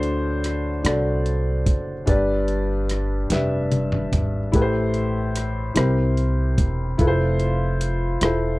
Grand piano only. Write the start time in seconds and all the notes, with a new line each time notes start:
Already playing: D3 D4 E4 F#4 A4 C5 C#5
0.83 D4 F#4 A4 D5
2.06 G2 D4 G4 B4 D5
3.30 D4 G4 B4 E5
4.52 A2 E4 G4 A4 B4
4.62 C5
5.74 C3 E4 G4 A#4 C5
6.98 E4 F4 A4 B4
7.07 C5
8.21 E4 F4 A4 C5